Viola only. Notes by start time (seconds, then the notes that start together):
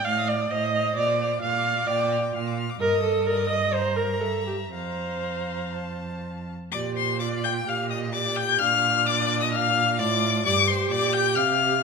0.05 F5
0.28 D5
0.51 D#5
0.96 D5
1.42 F5
1.87 D5
2.80 A#4
3.03 A4
3.26 A#4
3.49 D#5
3.73 C5
3.96 A#4
4.21 A4
4.46 G4
4.73 C5
6.73 G4
7.20 F4
7.66 G4
8.13 G4
8.61 D4
10.00 F4
10.46 G4